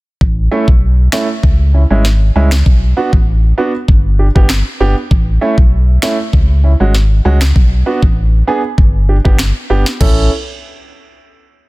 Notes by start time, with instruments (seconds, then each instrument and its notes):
0.21 sub bass A1, kick
0.51 grand piano A3 C#4 E4
0.68 sub bass B1, kick
1.12 grand piano A3 C#4 E4, finger snap, snare
1.43 sub bass C#2, kick
1.74 grand piano C#4 E4
1.90 sub bass G#1, grand piano G#3 C#4 E4
2.05 snare
2.36 sub bass C#2, grand piano G#3 C#4 E4
2.51 finger snap, snare
2.66 sub bass B1, kick
2.97 grand piano B3 D4 F#4
3.13 sub bass A1, kick
3.58 grand piano B3 D4 F#4
3.88 sub bass G1, kick
4.19 grand piano D4 G4
4.35 sub bass G1, grand piano B3 D4 G4, kick
4.49 finger snap, snare
4.80 sub bass G1, grand piano B3 D4 G4
5.11 sub bass A1, kick
5.41 grand piano A3 C#4 E4
5.58 sub bass B1, kick
6.02 grand piano A3 C#4 E4, finger snap, snare
6.33 sub bass C#2, kick
6.64 grand piano C#4 E4
6.80 sub bass G#1, grand piano G#3 C#4 F#4
6.95 snare
7.25 sub bass C#2, grand piano G#3 C#4 F#4
7.41 finger snap, snare
7.56 sub bass B1, kick
7.86 grand piano B3 D4 F#4
8.03 sub bass A1, kick
8.47 grand piano B3 D4 G#4
8.78 sub bass G1, kick
9.09 grand piano D4 G4
9.25 sub bass G1, grand piano B3 D4 G4, kick
9.39 finger snap, snare
9.70 sub bass G1, grand piano B3 D4 G4
9.86 snare
10.01 sub bass A1, grand piano C#4 E4 A4, kick, floor tom, crash